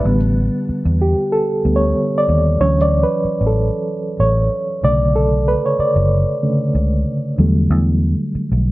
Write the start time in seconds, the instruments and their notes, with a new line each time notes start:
Already playing: reed electric piano B4
0.05 fingered electric bass A1, reed electric piano D3 G3 B3
0.69 muted fingered electric bass stroke
0.85 fingered electric bass E2
1.02 reed electric piano G4
1.32 reed electric piano A4
1.64 fingered electric bass D2, reed electric piano D3 G3 B3
1.76 reed electric piano C#5
2.18 reed electric piano D5
2.29 fingered electric bass D#2
2.60 fingered electric bass D2, reed electric piano E3 F#3 C#4 C#5
2.82 reed electric piano D5
3.03 reed electric piano B4
3.25 muted fingered electric bass stroke
3.41 fingered electric bass A1
3.47 reed electric piano A4
4.20 fingered electric bass A1, reed electric piano C#5
4.83 fingered electric bass B1, reed electric piano C#3 D3 A3 D5
5.16 reed electric piano A4
5.48 reed electric piano B4
5.66 reed electric piano C#5
5.79 reed electric piano D5, muted fingered electric bass stroke
5.96 fingered electric bass F#1
6.42 reed electric piano C#3 D3 A3
6.75 fingered electric bass C#2
7.38 fingered electric bass E2, reed electric piano D3 F#3 G3 A3
7.71 fingered electric bass E2
8.35 muted fingered electric bass stroke
8.52 fingered electric bass B1